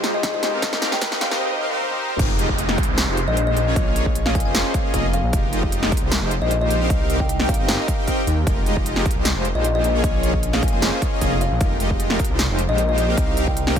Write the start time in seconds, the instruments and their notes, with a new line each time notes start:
Already playing: supersaw synth G#3 D#4 F4 G4 C5, riser
0.04 snare, closed hi-hat
0.14 kalimba D#5
0.23 kick, snare, closed hi-hat
0.34 kalimba D#5
0.43 snare, closed hi-hat
0.53 supersaw synth C4 D#4 G4 A#4 F5
0.62 kick, snare, closed hi-hat
0.73 snare
0.82 supersaw synth C4 D#4 G4 A#4 F5, snare, closed hi-hat
0.92 kalimba G5, snare
1.02 kick, snare, closed hi-hat
1.12 supersaw synth C4 D#4 G4 A#4 G5, snare
1.21 kalimba F5, snare, closed hi-hat
1.31 supersaw synth C4 D#4 G4 A#4 D#5, snare
1.60 supersaw synth C4 D#4 G4 A#4 F5
1.70 supersaw synth C4 D#4 G4 A#4 C5
1.80 high tom
1.90 high tom
2.10 mid tom
2.19 detuned saw bass F1, supersaw synth G#3 D#4 F4 G4 A#4, kick, closed hi-hat, crash, downlifter
2.39 supersaw synth G#3 D#4 F4 G4 D#5, closed hi-hat
2.49 kick
2.58 closed hi-hat
2.69 supersaw synth G#3 D#4 F4 G4 A#4, snare
2.78 kick, closed hi-hat
2.83 closed hi-hat
2.88 detuned saw bass C2, supersaw synth G#3 D#4 F4 G4 C5
2.98 snare, closed hi-hat
3.08 detuned saw bass F1
3.17 closed hi-hat
3.28 detuned saw bass A#1, kalimba D#5
3.37 kalimba D#5, closed hi-hat
3.47 kalimba D#5
3.57 detuned saw bass A#1, closed hi-hat
3.67 supersaw synth A#3 C#4 F4 G#4 C#5
3.76 kick, closed hi-hat
3.96 supersaw synth A#3 C#4 F4 G#4 C#5, closed hi-hat
4.06 kick
4.15 closed hi-hat
4.26 supersaw synth A#3 C#4 F4 G#4 D#5, kalimba F5, snare
4.35 kalimba G#5, kick, closed hi-hat
4.40 closed hi-hat
4.45 detuned saw bass F1, supersaw synth A#3 C#4 F4 G#4 C5, kalimba G#5
4.55 snare, closed hi-hat
4.74 supersaw synth A#3 C#4 F4 G#4 C#5, kick, closed hi-hat
4.85 supersaw synth A#3 C#4 F4 G#4 D#5
4.94 detuned saw bass F1, supersaw synth A#3 C#4 F4 G#4 D#5, kick, closed hi-hat
5.13 kalimba F5, closed hi-hat
5.24 detuned saw bass A#1
5.33 detuned saw bass F1, supersaw synth G#3 D#4 F4 G4 A#4, kick, closed hi-hat
5.53 supersaw synth G#3 D#4 F4 G4 D#5, closed hi-hat
5.63 kick
5.72 closed hi-hat
5.83 supersaw synth G#3 D#4 F4 G4 A#4, snare
5.92 kick, closed hi-hat
5.97 closed hi-hat
6.02 detuned saw bass C2, supersaw synth G#3 D#4 F4 G4 C5
6.12 snare, closed hi-hat
6.22 detuned saw bass F1
6.31 closed hi-hat
6.42 detuned saw bass A#1, kalimba D#5
6.51 kalimba D#5, closed hi-hat
6.61 kalimba D#5
6.71 closed hi-hat
6.81 supersaw synth C4 D#4 G4 A#4 F5
6.90 detuned saw bass C2, kick, closed hi-hat
7.10 supersaw synth C4 D#4 G4 A#4 F5, closed hi-hat
7.20 kalimba G5, kick
7.29 closed hi-hat
7.40 supersaw synth C4 D#4 G4 A#4 G5, snare
7.49 kalimba F5, kick, closed hi-hat
7.54 closed hi-hat
7.59 detuned saw bass G1, supersaw synth C4 D#4 G4 A#4 D#5
7.69 snare, closed hi-hat
7.88 supersaw synth C4 D#4 G4 A#4 F5, kick, closed hi-hat
7.98 supersaw synth C4 D#4 G4 A#4 G5
8.08 supersaw synth C4 D#4 G4 A#4 G5, kick, closed hi-hat
8.27 detuned saw bass D#2, closed hi-hat
8.47 detuned saw bass F1, supersaw synth G#3 D#4 F4 G4 A#4, kick, closed hi-hat
8.66 supersaw synth G#3 D#4 F4 G4 D#5, closed hi-hat
8.77 kick
8.86 closed hi-hat
8.96 supersaw synth G#3 D#4 F4 G4 A#4, snare
9.06 kick, closed hi-hat
9.11 closed hi-hat
9.16 detuned saw bass C2, supersaw synth G#3 D#4 F4 G4 C5
9.25 snare, closed hi-hat
9.36 detuned saw bass F1
9.45 closed hi-hat
9.55 detuned saw bass A#1, kalimba D#5
9.64 kalimba D#5, closed hi-hat
9.75 kalimba D#5
9.84 detuned saw bass A#1, closed hi-hat
9.94 supersaw synth A#3 C#4 F4 G#4 C#5
10.04 kick, closed hi-hat
10.23 supersaw synth A#3 C#4 F4 G#4 C#5, closed hi-hat
10.34 kick
10.43 closed hi-hat
10.53 supersaw synth A#3 C#4 F4 G#4 D#5, kalimba F5, snare
10.63 kalimba G#5, kick, closed hi-hat
10.68 closed hi-hat
10.73 detuned saw bass F1, supersaw synth A#3 C#4 F4 G#4 C5, kalimba G#5
10.82 snare, closed hi-hat
11.02 supersaw synth A#3 C#4 F4 G#4 C#5, kick, closed hi-hat
11.12 supersaw synth A#3 C#4 F4 G#4 D#5
11.21 detuned saw bass F1, supersaw synth A#3 C#4 F4 G#4 D#5, kick, closed hi-hat
11.41 kalimba F5, closed hi-hat
11.52 detuned saw bass A#1
11.61 detuned saw bass F1, supersaw synth G#3 D#4 F4 G4 A#4, kick, closed hi-hat
11.80 supersaw synth G#3 D#4 F4 G4 D#5, closed hi-hat
11.91 kick
12.00 closed hi-hat
12.10 supersaw synth G#3 D#4 F4 G4 A#4, snare
12.19 kick, closed hi-hat
12.25 closed hi-hat
12.30 detuned saw bass C2, supersaw synth G#3 D#4 F4 G4 C5
12.39 snare, closed hi-hat
12.50 detuned saw bass F1
12.59 closed hi-hat
12.69 detuned saw bass A#1, kalimba D#5
12.78 kalimba D#5, closed hi-hat
12.89 kalimba D#5
12.98 closed hi-hat
13.08 supersaw synth C4 D#4 G4 A#4 F5
13.18 detuned saw bass C2, kick, closed hi-hat
13.37 supersaw synth C4 D#4 G4 A#4 F5, closed hi-hat
13.47 kalimba G5, kick
13.57 closed hi-hat
13.67 supersaw synth C4 D#4 G4 A#4 G5, snare
13.76 kalimba F5, kick, closed hi-hat